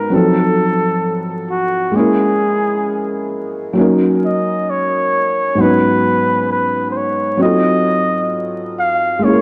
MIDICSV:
0, 0, Header, 1, 3, 480
1, 0, Start_track
1, 0, Tempo, 909091
1, 1028, Time_signature, 4, 2, 24, 8
1, 4972, End_track
2, 0, Start_track
2, 0, Title_t, "Flugelhorn"
2, 0, Program_c, 0, 56
2, 0, Note_on_c, 0, 70, 78
2, 77, Note_on_c, 0, 69, 88
2, 85, Note_off_c, 0, 70, 0
2, 667, Note_off_c, 0, 69, 0
2, 797, Note_on_c, 0, 66, 79
2, 1033, Note_on_c, 0, 68, 83
2, 1041, Note_off_c, 0, 66, 0
2, 1750, Note_off_c, 0, 68, 0
2, 2243, Note_on_c, 0, 75, 80
2, 2482, Note_on_c, 0, 73, 92
2, 2490, Note_off_c, 0, 75, 0
2, 2962, Note_on_c, 0, 71, 94
2, 2970, Note_off_c, 0, 73, 0
2, 3435, Note_off_c, 0, 71, 0
2, 3442, Note_on_c, 0, 71, 80
2, 3631, Note_off_c, 0, 71, 0
2, 3648, Note_on_c, 0, 72, 65
2, 3680, Note_on_c, 0, 73, 76
2, 3688, Note_off_c, 0, 72, 0
2, 3914, Note_off_c, 0, 73, 0
2, 3921, Note_on_c, 0, 75, 100
2, 4488, Note_off_c, 0, 75, 0
2, 4642, Note_on_c, 0, 77, 108
2, 4878, Note_on_c, 0, 73, 92
2, 4886, Note_off_c, 0, 77, 0
2, 4972, Note_off_c, 0, 73, 0
2, 4972, End_track
3, 0, Start_track
3, 0, Title_t, "Felt piano"
3, 0, Program_c, 1, 0
3, 0, Control_c, 1, 64, 127
3, 0, Note_on_c, 1, 44, 61
3, 0, Note_on_c, 1, 54, 55
3, 0, Note_on_c, 1, 59, 54
3, 0, Note_on_c, 1, 61, 54
3, 0, Note_on_c, 1, 63, 54
3, 0, Note_on_c, 1, 68, 64
3, 51, Note_off_c, 1, 54, 0
3, 51, Note_on_c, 1, 54, 61
3, 56, Note_off_c, 1, 63, 0
3, 60, Note_off_c, 1, 68, 0
3, 60, Note_on_c, 1, 60, 55
3, 71, Note_on_c, 1, 63, 50
3, 75, Control_c, 1, 64, 0
3, 76, Note_off_c, 1, 44, 0
3, 78, Note_off_c, 1, 61, 0
3, 79, Note_off_c, 1, 59, 0
3, 81, Note_on_c, 1, 53, 54
3, 90, Note_on_c, 1, 69, 59
3, 164, Control_c, 1, 64, 127
3, 1000, Note_off_c, 1, 54, 0
3, 1005, Note_off_c, 1, 60, 0
3, 1010, Note_off_c, 1, 63, 0
3, 1011, Note_on_c, 1, 56, 61
3, 1015, Note_off_c, 1, 53, 0
3, 1020, Note_off_c, 1, 69, 0
3, 1021, Note_on_c, 1, 58, 55
3, 1031, Note_on_c, 1, 61, 57
3, 1035, Control_c, 1, 64, 0
3, 1042, Note_on_c, 1, 64, 56
3, 1051, Note_on_c, 1, 70, 69
3, 1112, Control_c, 1, 64, 127
3, 1960, Note_off_c, 1, 56, 0
3, 1965, Note_off_c, 1, 58, 0
3, 1970, Note_off_c, 1, 61, 0
3, 1971, Note_on_c, 1, 54, 71
3, 1976, Note_off_c, 1, 64, 0
3, 1981, Note_off_c, 1, 70, 0
3, 1981, Note_on_c, 1, 58, 65
3, 1991, Note_on_c, 1, 61, 68
3, 1996, Control_c, 1, 64, 0
3, 2002, Note_on_c, 1, 63, 66
3, 2012, Note_on_c, 1, 70, 74
3, 2090, Control_c, 1, 64, 127
3, 2920, Note_off_c, 1, 54, 0
3, 2925, Note_off_c, 1, 58, 0
3, 2930, Note_off_c, 1, 61, 0
3, 2930, Note_on_c, 1, 44, 65
3, 2936, Note_off_c, 1, 63, 0
3, 2940, Note_on_c, 1, 54, 57
3, 2941, Note_off_c, 1, 70, 0
3, 2947, Note_on_c, 1, 59, 60
3, 2955, Control_c, 1, 64, 0
3, 2955, Note_on_c, 1, 61, 56
3, 2963, Note_on_c, 1, 63, 60
3, 2972, Note_on_c, 1, 71, 68
3, 3041, Control_c, 1, 64, 127
3, 3880, Note_off_c, 1, 44, 0
3, 3884, Note_off_c, 1, 54, 0
3, 3888, Note_off_c, 1, 59, 0
3, 3892, Note_off_c, 1, 61, 0
3, 3892, Note_on_c, 1, 54, 63
3, 3896, Note_off_c, 1, 63, 0
3, 3901, Note_off_c, 1, 71, 0
3, 3902, Note_on_c, 1, 60, 57
3, 3912, Note_on_c, 1, 63, 53
3, 3914, Control_c, 1, 64, 0
3, 3923, Note_on_c, 1, 65, 56
3, 3931, Note_on_c, 1, 69, 62
3, 3995, Control_c, 1, 64, 127
3, 4841, Note_off_c, 1, 54, 0
3, 4846, Note_off_c, 1, 60, 0
3, 4851, Note_off_c, 1, 63, 0
3, 4853, Note_on_c, 1, 56, 63
3, 4856, Note_off_c, 1, 65, 0
3, 4861, Note_off_c, 1, 69, 0
3, 4863, Note_on_c, 1, 58, 58
3, 4874, Note_on_c, 1, 61, 56
3, 4876, Control_c, 1, 64, 0
3, 4885, Note_on_c, 1, 64, 55
3, 4894, Note_on_c, 1, 68, 52
3, 4922, Note_off_c, 1, 68, 0
3, 4927, Note_on_c, 1, 70, 67
3, 4972, Note_off_c, 1, 56, 0
3, 4972, Note_off_c, 1, 58, 0
3, 4972, Note_off_c, 1, 61, 0
3, 4972, Note_off_c, 1, 64, 0
3, 4972, Note_off_c, 1, 70, 0
3, 4972, End_track
0, 0, End_of_file